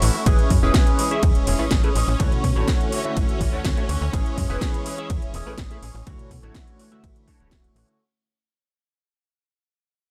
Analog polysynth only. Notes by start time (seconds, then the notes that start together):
0.26 C#4 E4 G#4 B4
0.63 C#4 E4 G#4 B4
1.11 C#4 E4 G#4 E5
1.59 A3 C#4 E4 G#4 B4
1.83 A3 C#4 E4 G#4 B4
2.19 D3 A3 E4 F#4 C#5
2.56 D3 A3 E4 F#4 C#5
3.04 D3 A3 E4 F#4 E5
3.52 A3 D4 E4 F#4 C#5
3.77 A3 D4 E4 F#4 C#5
4.13 C#4 E4 G#4 B4
4.50 C#4 E4 G#4 B4
4.98 C#4 E4 G#4 E5
5.46 A3 C#4 E4 G#4 B4
5.71 A3 C#4 E4 G#4 B4
6.06 D3 A3 E4 F#4 C#5
6.43 D3 A3 E4 F#4 C#5
6.91 D3 A3 E4 F#4 E5
7.27 A3 D4 E4 F#4 C#5
7.40 D3 A3 E4 F#4 C#5